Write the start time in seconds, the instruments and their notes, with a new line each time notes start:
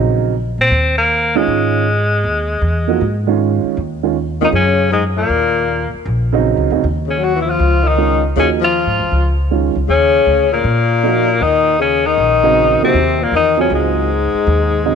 Already playing: upright bass A#1, upright piano C#3 F#3 C4 D#4
0.58 upright bass A#2, tenor saxophone C4
0.70 upright bass D#2
0.98 tenor saxophone A#3
1.35 upright piano D#3 G#3 C#4 F4, tenor saxophone G#3
1.47 upright bass G#2
2.24 upright bass D#2
2.61 upright bass E2
2.88 upright piano F3 A#3 D#4 F#4
3.01 upright bass G#2
3.27 upright piano D#3 G#3 C#4 F4
3.64 muted upright bass stroke
3.77 upright bass D#2
4.03 upright piano D#3 G#3 C#4 F4
4.41 tenor saxophone D#3 D#4, upright piano D#3 G#3 C#4 F4
4.52 upright bass F#2, tenor saxophone C#3 C#4
4.91 tenor saxophone G#2 G#3
5.16 tenor saxophone A#2 A#3
5.29 upright bass D#2
5.94 muted upright bass stroke
6.05 upright bass A#1
6.33 upright piano C#3 F#3 C4 D#4
6.57 upright bass C#2
6.70 upright bass D2, upright piano C#3 F#3 C4 D#4
6.84 upright bass D#2
7.07 tenor saxophone C#3 C#4
7.19 tenor saxophone F#3
7.24 tenor saxophone F#4
7.35 tenor saxophone E3
7.42 tenor saxophone F3 E4
7.50 tenor saxophone F4
7.59 upright bass C#2
7.83 tenor saxophone D#3
7.88 tenor saxophone D#4
7.97 upright piano D#3 G#3 C#4 F4
8.36 upright bass D#2, tenor saxophone C#3 C#4, upright piano F3 A#3 D#4 F#4
8.60 tenor saxophone F3 F4
8.87 upright bass G#2
8.99 upright bass C#2
9.11 upright bass C#2
9.51 upright piano D#3 G#3 C#4 F4
9.75 upright bass C#2
9.88 upright bass D#2, tenor saxophone C#3 C#4
10.26 upright bass D2
10.52 tenor saxophone A#2 A#3
10.64 upright bass A#2
11.03 upright piano F3 A#3 D#4 F#4
11.41 upright bass D#2, tenor saxophone D#3 D#4
11.79 tenor saxophone C#3 C#4
12.06 tenor saxophone D#3 D#4
12.18 upright bass A#1
12.43 upright piano C#3 F#3 C4 D#4
12.82 tenor saxophone C3 C4, upright piano F3 A#3 D#4 F#4
12.94 upright bass D#2
13.21 tenor saxophone A#2 A#3
13.32 upright bass E2, tenor saxophone D#3
13.36 tenor saxophone D#4
13.57 tenor saxophone C#3 C#4, upright piano F#3 C4 F4 G#4
13.70 upright bass C#2, tenor saxophone G#2
13.75 tenor saxophone G#3
14.34 muted upright bass stroke
14.47 upright bass D#2
14.85 upright piano C#3 F#3 C4 D#4